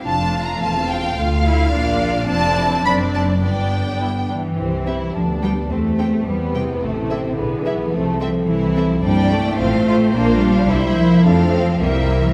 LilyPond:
<<
  \new Staff \with { instrumentName = "Violin section" } { \time 2/4 \key f \major \tempo 4 = 107 \tuplet 3/2 { a''4 bes''8 } a''8 g''8 | f''2 | \key c \major a''4 b''8 a''8 | g''4. r8 |
r8 e''8 r8 g''8 | r8 g''8 r8 g''8 | r8 e''8 r8 e''8 | r8 e''8 r8 e''8 |
\key f \major g''4 f''8 f''8 | f''4 e''4 | f''4 e''4 | }
  \new Staff \with { instrumentName = "French horn section" } { \time 2/4 \key f \major << { r2 | r2 | \key c \major r2 | r2 |
g'2~ | g'2 | a'4 gis'4 | a'2 |
\key f \major e'4 f'4 | f'4 e'4 | f'4 e'4 | } \\ { r2 | r2 | r2 | r2 |
c'4 b4 | c'2 | e'2 | c'2 |
c'4 c'4 | d'4 bes4 | a4 bes4 | } >> }
  \new Staff \with { instrumentName = "Viola section" } { \time 2/4 \key f \major << { d'4 c'4 | f'8 e'8 d'4 | \key c \major d'4 d'4 | d'4. r8 |
r8 g'8 r8 g'8 | r8 g'8 r8 g'8 | r8 a'8 r8 gis'8 | r8 a'8 r8 a'8 |
\key f \major d''4 c''4~ | c''4 c''4 | a'4 bes'4 | } \\ { a2 | a4 bes4 | c'4 c'4 | b4. r8 |
r8 c'8 r8 b8 | r8 c'8 r8 c'8 | r8 e'8 r8 e'8 | r8 c'8 r8 c'8 |
bes4 c'4 | d'4 e'4 | c'4 c'4 | } >> }
  \new Staff \with { instrumentName = "Violin section" } { \time 2/4 \key f \major << { f''2~ | f''4 d''4 | \key c \major d''4 d''4 | d''4 e'8 d'8 |
c'8 e'8 d'4 | c'8 c'8 b4 | a8 c'8 b4 | a8 c'8 e'4 |
\key f \major d'4 c'8 f'8 | d'4 e'4 | d'8 c'8 bes4 | } \\ { f'2 | f'4 f'4 | f'8 e'8 d'4 | d'4 r4 |
r2 | r2 | r2 | r2 |
r2 | r2 | r2 | } >> }
  \new Staff \with { instrumentName = "Cello section" } { \clef bass \time 2/4 \key f \major f,4 e,4 | d,4 bes,4 | \key c \major f,4 fis,4 | g,4. e8~ |
e4 f8 g8 | a4 g8 c8~ | c4 d8 e8 | f4 e8. f16 |
\key f \major g8 a4. | bes8 g4 f8~ | f4 \tuplet 3/2 { g4 e8 } | }
  \new Staff \with { instrumentName = "Double bass section" } { \clef bass \time 2/4 \key f \major f,,4 e,,4 | d,4 bes,,4 | \key c \major f,,4 fis,,4 | g,,4. r8 |
c,4 d,4 | e,4 e,4 | a,,4 b,,4 | c,4 c,4 |
\key f \major g,,4 a,,4 | bes,,4 c,4 | f,4 c,4 | }
>>